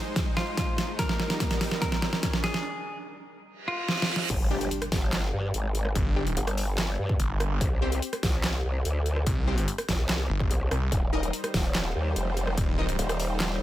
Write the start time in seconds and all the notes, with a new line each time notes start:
Already playing: G#3 D#4 C5, riser
0.16 kick, snare, closed hi-hat
0.37 F4, snare
0.57 kick, snare, closed hi-hat
0.78 snare, closed hi-hat
0.99 G3 D#4 A#4, kick, snare, closed hi-hat
1.09 snare
1.20 snare
1.30 snare, closed hi-hat
1.40 kick, snare, closed hi-hat
1.51 snare, closed hi-hat
1.61 snare, open hi-hat
1.71 snare
1.82 A#4, kick, snare, closed hi-hat
1.92 snare
2.02 snare
2.13 snare
2.23 kick, snare, closed hi-hat
2.33 snare
2.44 G#4, snare, closed hi-hat
2.54 snare
3.47 reverse cymbal
3.68 F4
3.89 snare
4.02 snare
4.16 snare
4.30 G1, kick, closed hi-hat, crash, impact
4.51 G3 D4 G4
4.61 closed hi-hat
4.71 closed hi-hat
4.82 cross-stick, closed hi-hat
4.92 G1, kick, snare, open hi-hat
5.13 snare, clap, closed hi-hat
5.33 G2
5.54 G#1, closed hi-hat
5.75 closed hi-hat
5.85 cross-stick
5.95 G1, kick, closed hi-hat
6.16 G3 D4 G4
6.27 closed hi-hat
6.37 G1, closed hi-hat
6.47 cross-stick, closed hi-hat
6.58 open hi-hat
6.78 snare, clap, closed hi-hat
6.99 G2
7.09 kick
7.20 G1, closed hi-hat
7.40 cross-stick, closed hi-hat
7.61 C2, kick, closed hi-hat
7.82 C4 G4 C5
7.92 closed hi-hat
8.02 closed hi-hat
8.13 cross-stick, closed hi-hat
8.23 C2, kick, snare, open hi-hat
8.44 snare, clap, closed hi-hat
8.64 C2
8.85 D2, closed hi-hat
9.06 closed hi-hat
9.16 cross-stick
9.26 C2, kick, closed hi-hat
9.47 C4 G4 C5
9.58 closed hi-hat
9.68 closed hi-hat
9.78 cross-stick, closed hi-hat
9.89 G1, kick, snare, open hi-hat
9.99 C2
10.09 snare, clap, closed hi-hat
10.30 G1
10.40 kick
10.51 C2, closed hi-hat
10.71 C2, cross-stick, closed hi-hat
10.92 D#1 G3 D#4 C5, kick, closed hi-hat
11.13 D#4 A#4 D#5
11.23 closed hi-hat
11.33 closed hi-hat
11.44 cross-stick, closed hi-hat
11.54 D#1, kick, snare, open hi-hat
11.75 snare, clap, closed hi-hat
11.95 D#2
12.16 F1, closed hi-hat
12.37 closed hi-hat
12.47 cross-stick
12.57 D#1, kick, closed hi-hat
12.78 D#4 A#4 D#5
12.89 closed hi-hat
12.99 D#1, closed hi-hat
13.09 cross-stick, closed hi-hat
13.20 open hi-hat
13.40 snare, clap, closed hi-hat